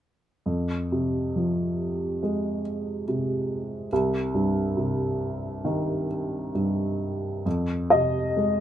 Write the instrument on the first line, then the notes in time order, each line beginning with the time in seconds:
upright piano
0.46 F2
0.92 C3
1.36 F3
2.23 G#3
3.08 C3
3.92 C2
4.34 G2
4.77 C3
5.65 D#3
6.55 G2
7.46 F2
7.90 C3 D#5
8.36 G#3